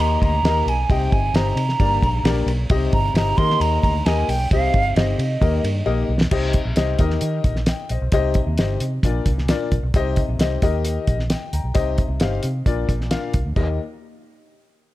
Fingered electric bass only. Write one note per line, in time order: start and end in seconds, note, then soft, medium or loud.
0.00 0.15 D#2 medium
0.21 0.39 D2 medium
0.43 0.61 D#2 loud
0.66 0.83 B1 loud
0.90 1.07 C2 loud
1.12 1.29 G1 medium
1.34 1.51 G1 loud
1.56 1.74 C3 loud
1.80 1.97 G1 loud
2.02 2.20 A#1 loud
2.24 2.41 A#1 loud
2.46 2.64 B1 loud
2.70 2.87 C2 loud
2.93 3.10 G1 loud
3.14 3.32 G1 loud
3.38 3.55 D#3 medium
3.60 3.77 D#2 medium
3.83 4.00 D2 medium
4.06 4.23 D#2 loud
4.28 4.46 B1 medium
4.51 4.68 C2 loud
4.74 4.91 G1 medium
4.96 5.13 G1 loud
5.18 5.36 C3 loud
5.41 5.58 D#2 loud
5.63 5.81 G2 medium
5.86 6.04 A#1 medium
6.09 6.26 B1 loud
6.32 6.58 C2 loud
6.65 6.74 A#1 medium
6.77 6.94 C2 loud
6.99 7.16 D#2 medium
7.22 7.39 D#3 loud
7.44 7.71 A#1 loud
7.90 7.99 A#1 medium
8.02 8.10 B1 medium
8.12 8.38 C2 loud
8.47 8.55 D#2 medium
8.58 8.75 G1 loud
8.80 8.98 C3 loud
9.03 9.20 A#1 loud
9.26 9.52 C2 loud
9.71 9.80 A#1 loud
9.83 9.91 B1 medium
9.94 10.20 C2 loud
10.29 10.37 A#1 medium
10.39 10.56 C2 loud
10.62 10.97 D#2 medium
11.07 11.33 A#1 loud
11.53 11.61 D2 medium
11.64 11.72 B1 medium
11.76 12.02 C2 loud
12.08 12.17 C2 loud
12.21 12.38 G1 medium
12.44 12.61 C3 medium
12.66 12.84 A#1 loud
12.88 13.15 A#1 medium
13.34 13.43 C2 medium
13.46 13.54 D2 medium
13.56 13.78 D#2 medium